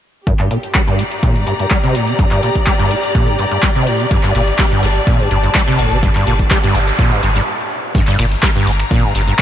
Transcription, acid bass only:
0.27 G2
0.39 G2
0.51 A#2
0.75 G3
0.87 G2
0.99 A2
1.23 A#2
1.35 G2
1.47 G2
1.59 G2
1.71 G3
1.83 C3
1.95 A2
2.07 C3
2.19 G2
2.31 G2
2.43 A#2
2.67 G3
2.79 G2
2.91 A2
3.15 A#2
3.27 G2
3.39 G2
3.51 G2
3.63 G3
3.75 C3
3.87 A2
3.99 C3
4.11 G2
4.23 G2
4.35 A#2
4.59 G3
4.71 G2
4.83 A2
5.07 A#2
5.20 G2
5.31 G2
5.43 G2
5.55 G3
5.68 C3
5.79 A2
5.92 C3
6.03 G2
6.16 G2
6.27 A#2
6.51 G3
6.64 G2
6.75 A2
6.99 A#2
7.11 G2
7.23 G2
7.35 G2
7.95 G2
8.07 G2
8.19 A#2
8.43 G3
8.55 G2
8.67 A2
8.91 A#2
9.03 G2
9.15 G2
9.27 G2

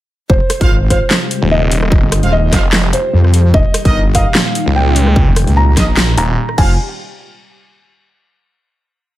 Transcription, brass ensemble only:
0.61 F4 C5 F5
0.90 F4 C5 F5
2.23 F4 C5 F5
2.53 F4 C5 F5
3.85 D#4 A#4 D#5
4.15 D#4 A#4 D#5
5.77 D#4 A#4 D#5
6.58 F4 C5 F5

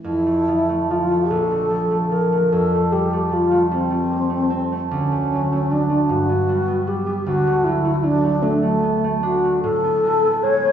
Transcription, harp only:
Already playing: E4
0.04 F2
0.27 A3
0.48 F3
0.69 A3
0.90 F3
1.11 A3
1.31 A#1
1.51 A3
1.70 F3
1.91 A3
2.12 F3
2.32 A3
2.52 F2
2.74 A3
2.92 G3
3.13 A3
3.31 G3
3.51 A3
3.71 G3
3.90 A3
4.11 A#3
4.30 A3
4.50 C4
4.72 A3
4.91 D2
5.12 A3
5.33 F#3
5.52 A3
5.71 F#3
5.89 A3
6.09 G2
6.29 B3
6.49 G3
6.68 B3
6.87 G3
7.06 B3
7.26 D2
7.47 A3
7.66 F#3
7.85 A3
8.03 F#3
8.23 A3
8.43 F#3
8.63 A3
8.83 B3
9.04 A3
9.23 D4
9.45 A3
9.64 A2
9.84 B3
10.04 G#3
10.24 B3
10.44 G#3
10.65 B3

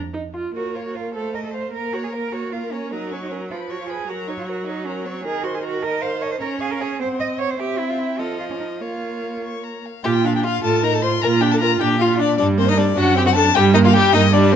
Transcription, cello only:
Already playing: F2
0.55 F#4
0.75 F4
0.86 F#4
0.95 F4
1.15 A4
1.34 A#4
1.44 A4
1.54 C5
1.73 A#4
1.93 F#4
2.04 G#4
2.13 A#4
2.32 F#4
2.52 F4
2.72 C#4
2.91 D#4
3.11 C#4
3.22 D#4
3.31 C#4
3.51 F4
3.70 F#4
3.80 F4
3.90 G#4
4.09 F#4
4.28 D#4
4.39 F4
4.47 F#4
4.67 D#4
4.86 C#4
5.05 C4
5.24 G#4
5.44 F#4
5.55 G#4
5.63 F#4
5.83 A#4
6.02 C5
6.21 C#5
6.32 C5
6.41 A#4
6.61 G#4
6.71 A#4
6.81 G#4
7.00 C5
7.20 D#5
7.39 C#5
7.50 C5
7.59 G4
7.79 E4
7.90 F4
7.99 E4
8.19 A4
8.39 F4
8.50 C#4
8.60 D#4
8.80 F4
10.04 A#2
10.63 A2
11.23 A#2
11.81 A#2
12.39 G2
12.97 F#2
13.56 G2
14.14 G2

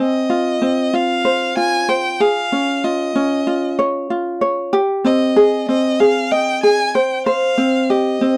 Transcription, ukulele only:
Already playing: G#4
0.00 C4
0.30 F4
0.62 C4
0.93 F4
1.25 C5
1.57 F4
1.89 C5
2.20 G#4
2.52 C#4
2.84 F4
3.15 C#4
3.47 F4
3.79 C#5
4.10 F4
4.41 C#5
4.73 G4
5.04 C4
5.36 G#4
5.69 C4
6.00 G#4
6.32 D#5
6.63 G#4
6.95 C5
7.26 C5
7.58 C4
7.90 G4
8.21 C4

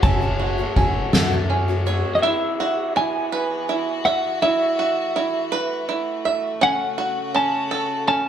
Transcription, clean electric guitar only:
0.03 A5
2.15 D#5
2.22 E5
2.97 G#5
4.05 F#5
4.42 E5
6.63 F#5
7.36 A5
8.08 A5

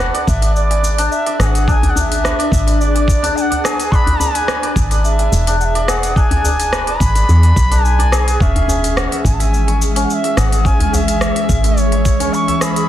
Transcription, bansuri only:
Already playing: F#5
0.28 E5
0.56 D5
1.12 E5
1.41 G#5
1.46 F#5
1.68 G#5 A5
1.90 F#5
1.97 E5 F#5
2.81 D5
3.36 G#5
3.41 F#5
3.65 G#5
3.91 B5 C#6
4.20 G#5
5.04 E5
5.60 F#5
5.64 E5
5.88 F#5
6.16 G#5
6.99 B5
7.85 G#5
8.41 E5
8.97 F#5
9.25 G#5
9.33 A5
9.41 G#5
10.03 F#5
10.10 E5 F#5
10.38 F#5
10.66 G#5
10.94 E5
11.79 C#5
12.34 C#6
12.63 B5

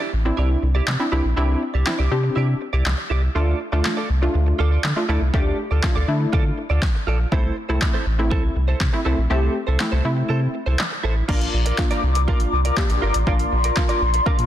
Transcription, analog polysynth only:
0.25 C4 D4 E4
0.99 C4 D4 E4
1.12 C4 D4 E4
1.37 C4 D4 E4
1.86 C4 D4 E4
2.11 C4 D4 G4
3.35 A3 D4 F4
3.72 A3 D4 F4
4.22 A3 D4 F4
4.96 A3 D4 F4
5.09 A3 D4 E4
5.34 A3 D4 G4
5.83 A3 D4 F4
6.08 A3 D4 E4
7.32 A3 C4 E4
7.69 A3 C4 E4
8.19 A3 C4 E4
8.93 A3 C4 E4
9.05 A3 C4 E4
9.30 A3 C4 G4
9.80 A3 C4 E4
10.05 A3 C4 E4
11.28 A#3 D4 F4
11.78 A#3 D4 F4
12.28 A#3 D4 F4
12.77 A#3 D4 G4
13.27 A#3 D4 F4
13.76 A#3 D4 F4
14.26 A#3 D4 F4

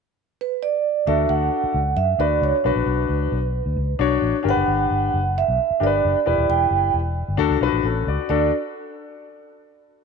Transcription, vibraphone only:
0.41 B4
0.63 D5
1.07 E5
1.29 F#5
1.97 E5
2.20 D5
2.44 C#5
2.67 B4
4.49 F#5
5.38 E5
5.83 D5
6.50 G5
8.29 D5

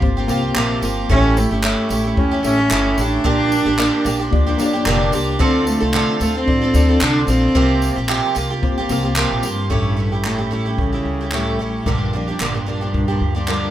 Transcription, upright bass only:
0.02 G1
0.28 C2
0.55 A#1
0.82 G1
1.10 A1
1.51 G1
1.90 A1
2.17 E2
2.44 A1
2.71 G1
2.97 A1
3.25 A#1
3.66 A1
4.05 A#1
4.33 D2
4.59 G1
4.86 F1
5.13 C2
5.40 D2
5.82 C2
6.20 D2
6.48 A1
6.74 D2
7.01 C2
7.28 A#1
7.55 C2
7.97 A#1
8.36 C2
8.63 G1
8.89 C2
9.32 A#1
9.43 G1
9.71 A1
10.24 G1
10.51 A1
10.78 A1
11.05 C#2
11.59 A1
11.86 A#1
12.40 A1
12.66 A#1
12.94 A#1
13.21 D2

